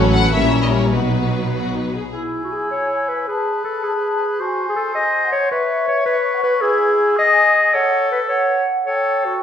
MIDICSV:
0, 0, Header, 1, 9, 480
1, 0, Start_track
1, 0, Key_signature, 4, "major"
1, 0, Tempo, 397614
1, 1130, Time_signature, 6, 3, 24, 8
1, 2586, Tempo, 379987
1, 4026, Tempo, 371287
1, 10266, Tempo, 380952
1, 11929, End_track
2, 0, Start_track
2, 0, Title_t, "Flute section"
2, 0, Program_c, 0, 73
2, 2591, Note_on_c, 0, 80, 43
2, 3978, Note_off_c, 0, 80, 0
2, 4047, Note_on_c, 0, 81, 42
2, 4750, Note_off_c, 0, 81, 0
2, 4770, Note_on_c, 0, 81, 42
2, 5474, Note_off_c, 0, 81, 0
2, 5478, Note_on_c, 0, 80, 50
2, 6169, Note_off_c, 0, 80, 0
2, 6184, Note_on_c, 0, 80, 47
2, 6542, Note_off_c, 0, 80, 0
2, 6554, Note_on_c, 0, 78, 48
2, 6910, Note_on_c, 0, 76, 52
2, 6914, Note_off_c, 0, 78, 0
2, 7614, Note_off_c, 0, 76, 0
2, 7634, Note_on_c, 0, 76, 57
2, 7714, Note_off_c, 0, 76, 0
2, 7971, Note_on_c, 0, 78, 49
2, 8054, Note_off_c, 0, 78, 0
2, 8358, Note_on_c, 0, 80, 66
2, 9764, Note_off_c, 0, 80, 0
2, 9778, Note_on_c, 0, 78, 58
2, 10483, Note_off_c, 0, 78, 0
2, 10497, Note_on_c, 0, 78, 55
2, 11200, Note_off_c, 0, 78, 0
2, 11222, Note_on_c, 0, 79, 50
2, 11929, Note_off_c, 0, 79, 0
2, 11929, End_track
3, 0, Start_track
3, 0, Title_t, "Violin section"
3, 0, Program_c, 1, 48
3, 0, Note_on_c, 1, 73, 66
3, 162, Note_on_c, 1, 78, 72
3, 165, Note_off_c, 1, 73, 0
3, 391, Note_on_c, 1, 76, 65
3, 399, Note_off_c, 1, 78, 0
3, 749, Note_off_c, 1, 76, 0
3, 753, Note_on_c, 1, 75, 48
3, 804, Note_off_c, 1, 75, 0
3, 862, Note_on_c, 1, 73, 52
3, 1097, Note_on_c, 1, 71, 45
3, 1113, Note_off_c, 1, 73, 0
3, 2308, Note_off_c, 1, 71, 0
3, 11929, End_track
4, 0, Start_track
4, 0, Title_t, "Clarinet"
4, 0, Program_c, 2, 71
4, 2574, Note_on_c, 2, 64, 42
4, 2915, Note_off_c, 2, 64, 0
4, 2965, Note_on_c, 2, 66, 42
4, 3070, Note_on_c, 2, 68, 46
4, 3089, Note_off_c, 2, 66, 0
4, 3295, Note_off_c, 2, 68, 0
4, 3302, Note_on_c, 2, 73, 59
4, 3778, Note_on_c, 2, 71, 50
4, 3797, Note_off_c, 2, 73, 0
4, 4013, Note_on_c, 2, 68, 49
4, 4032, Note_off_c, 2, 71, 0
4, 4487, Note_off_c, 2, 68, 0
4, 4495, Note_on_c, 2, 69, 53
4, 4737, Note_on_c, 2, 68, 62
4, 4756, Note_off_c, 2, 69, 0
4, 5473, Note_on_c, 2, 66, 58
4, 5492, Note_off_c, 2, 68, 0
4, 5834, Note_off_c, 2, 66, 0
4, 5849, Note_on_c, 2, 68, 55
4, 5900, Note_off_c, 2, 68, 0
4, 5936, Note_on_c, 2, 69, 62
4, 6173, Note_off_c, 2, 69, 0
4, 6181, Note_on_c, 2, 75, 74
4, 6655, Note_off_c, 2, 75, 0
4, 6662, Note_on_c, 2, 73, 75
4, 6903, Note_off_c, 2, 73, 0
4, 6912, Note_on_c, 2, 71, 74
4, 7372, Note_off_c, 2, 71, 0
4, 7379, Note_on_c, 2, 73, 75
4, 7605, Note_off_c, 2, 73, 0
4, 7613, Note_on_c, 2, 71, 81
4, 8088, Note_off_c, 2, 71, 0
4, 8098, Note_on_c, 2, 71, 84
4, 8331, Note_on_c, 2, 68, 77
4, 8351, Note_off_c, 2, 71, 0
4, 9057, Note_off_c, 2, 68, 0
4, 9075, Note_on_c, 2, 75, 95
4, 9795, Note_on_c, 2, 73, 76
4, 9814, Note_off_c, 2, 75, 0
4, 10270, Note_off_c, 2, 73, 0
4, 10278, Note_on_c, 2, 71, 69
4, 10381, Note_off_c, 2, 71, 0
4, 10484, Note_on_c, 2, 73, 72
4, 10959, Note_off_c, 2, 73, 0
4, 11210, Note_on_c, 2, 73, 71
4, 11708, Note_on_c, 2, 66, 63
4, 11727, Note_off_c, 2, 73, 0
4, 11929, Note_off_c, 2, 66, 0
4, 11929, End_track
5, 0, Start_track
5, 0, Title_t, "Oboe"
5, 0, Program_c, 3, 68
5, 2575, Note_on_c, 3, 64, 43
5, 3970, Note_off_c, 3, 64, 0
5, 4029, Note_on_c, 3, 71, 44
5, 5478, Note_on_c, 3, 72, 55
5, 5497, Note_off_c, 3, 71, 0
5, 6900, Note_off_c, 3, 72, 0
5, 6907, Note_on_c, 3, 73, 59
5, 8314, Note_off_c, 3, 73, 0
5, 8348, Note_on_c, 3, 64, 62
5, 9051, Note_on_c, 3, 68, 56
5, 9071, Note_off_c, 3, 64, 0
5, 9786, Note_on_c, 3, 69, 60
5, 9805, Note_off_c, 3, 68, 0
5, 10868, Note_off_c, 3, 69, 0
5, 11216, Note_on_c, 3, 69, 52
5, 11895, Note_off_c, 3, 69, 0
5, 11929, End_track
6, 0, Start_track
6, 0, Title_t, "Violin section"
6, 0, Program_c, 4, 48
6, 0, Note_on_c, 4, 69, 52
6, 53, Note_on_c, 4, 71, 46
6, 351, Note_off_c, 4, 69, 0
6, 395, Note_on_c, 4, 64, 49
6, 402, Note_on_c, 4, 70, 51
6, 407, Note_off_c, 4, 71, 0
6, 1107, Note_off_c, 4, 64, 0
6, 1118, Note_on_c, 4, 66, 34
6, 1120, Note_on_c, 4, 63, 37
6, 1125, Note_off_c, 4, 70, 0
6, 1788, Note_off_c, 4, 66, 0
6, 1802, Note_off_c, 4, 63, 0
6, 1862, Note_on_c, 4, 66, 43
6, 2088, Note_off_c, 4, 66, 0
6, 2107, Note_on_c, 4, 63, 36
6, 2352, Note_off_c, 4, 63, 0
6, 2354, Note_on_c, 4, 68, 37
6, 2590, Note_off_c, 4, 68, 0
6, 11929, End_track
7, 0, Start_track
7, 0, Title_t, "Viola section"
7, 0, Program_c, 5, 48
7, 0, Note_on_c, 5, 54, 53
7, 0, Note_on_c, 5, 61, 55
7, 372, Note_off_c, 5, 61, 0
7, 374, Note_off_c, 5, 54, 0
7, 417, Note_on_c, 5, 55, 46
7, 418, Note_on_c, 5, 61, 50
7, 1119, Note_off_c, 5, 61, 0
7, 1128, Note_on_c, 5, 54, 36
7, 1133, Note_off_c, 5, 55, 0
7, 1133, Note_on_c, 5, 59, 39
7, 2348, Note_off_c, 5, 54, 0
7, 2350, Note_off_c, 5, 59, 0
7, 11929, End_track
8, 0, Start_track
8, 0, Title_t, "Cello section"
8, 0, Program_c, 6, 48
8, 0, Note_on_c, 6, 45, 51
8, 365, Note_off_c, 6, 45, 0
8, 419, Note_on_c, 6, 46, 51
8, 1133, Note_on_c, 6, 47, 42
8, 1134, Note_off_c, 6, 46, 0
8, 2350, Note_off_c, 6, 47, 0
8, 11929, End_track
9, 0, Start_track
9, 0, Title_t, "Double bass section"
9, 0, Program_c, 7, 48
9, 0, Note_on_c, 7, 33, 56
9, 363, Note_off_c, 7, 33, 0
9, 408, Note_on_c, 7, 34, 50
9, 1122, Note_on_c, 7, 35, 41
9, 1128, Note_off_c, 7, 34, 0
9, 2345, Note_off_c, 7, 35, 0
9, 11929, End_track
0, 0, End_of_file